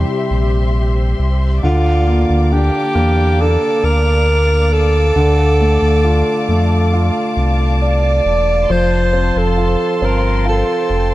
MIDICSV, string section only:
0, 0, Header, 1, 2, 480
1, 0, Start_track
1, 0, Key_signature, -1, "major"
1, 0, Tempo, 882353
1, 888, Time_signature, 4, 2, 24, 8
1, 6062, End_track
2, 0, Start_track
2, 0, Title_t, "String section"
2, 0, Program_c, 0, 48
2, 0, Note_on_c, 0, 67, 60
2, 0, Note_on_c, 0, 72, 51
2, 0, Note_on_c, 0, 76, 51
2, 0, Note_on_c, 0, 84, 57
2, 865, Note_off_c, 0, 72, 0
2, 866, Note_off_c, 0, 84, 0
2, 868, Note_off_c, 0, 67, 0
2, 868, Note_off_c, 0, 76, 0
2, 884, Note_on_c, 0, 74, 57
2, 884, Note_on_c, 0, 86, 68
2, 885, Note_on_c, 0, 58, 58
2, 885, Note_on_c, 0, 77, 55
2, 2787, Note_off_c, 0, 58, 0
2, 2811, Note_on_c, 0, 81, 60
2, 4704, Note_off_c, 0, 74, 0
2, 4705, Note_off_c, 0, 86, 0
2, 4721, Note_on_c, 0, 72, 52
2, 4724, Note_on_c, 0, 84, 62
2, 5665, Note_off_c, 0, 77, 0
2, 5690, Note_on_c, 0, 79, 51
2, 6062, Note_off_c, 0, 72, 0
2, 6062, Note_off_c, 0, 79, 0
2, 6062, Note_off_c, 0, 81, 0
2, 6062, Note_off_c, 0, 84, 0
2, 6062, End_track
0, 0, End_of_file